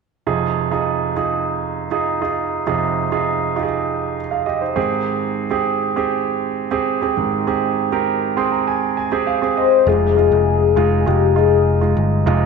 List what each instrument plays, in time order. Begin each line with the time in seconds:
0.27 grand piano F2 C3 D#4 F4 G#4
0.71 grand piano D#4 F4 G#4
1.16 grand piano D#4 F4 G#4
1.91 grand piano D#4 F4 G#4
2.22 grand piano D#4 F4 G#4
2.67 grand piano F2 C3 D#4 F4 G#4
3.12 grand piano D#4 F4 G#4
3.56 grand piano D#4 F4 G4
3.63 grand piano G#4
4.31 grand piano G#4 F5
4.46 grand piano G4 D#5
4.61 grand piano D#4 C5
4.76 grand piano G#2 D#3 C4 G4 G#4
5.51 grand piano C4 G4 G#4
5.96 grand piano C4 G4 G#4
6.71 grand piano C4 G4 G#4
7.02 grand piano C4 G4 G#4
7.17 grand piano G#2 D#3
7.47 grand piano C4 G4 G#4
7.92 grand piano C4 G4 A#4
8.37 grand piano C4 G#4 G5 C6
8.52 grand piano A#5
8.67 grand piano G#5
8.97 grand piano G#5
9.12 grand piano C4 G4 G#4 G5
9.27 grand piano F5
9.42 grand piano C4 G4 G#4
9.57 soft synth lead C5, grand piano D#5
9.87 picked electric bass F1, grand piano C3 G#3 D#4 F4, soft synth lead G#4
10.17 grand piano G#3 D#4 F4
10.32 picked electric bass F1
10.76 picked electric bass F1, grand piano G#3 D#4 F4
11.06 picked electric bass F1, grand piano G#3 D#4 F4, soft synth lead G4
11.36 grand piano G#3 D#4 F4, soft synth lead G#4
11.81 grand piano G#3 D#4 F4
11.97 picked electric bass G1
12.26 picked electric bass F1, grand piano C3 G#3 D#4 F4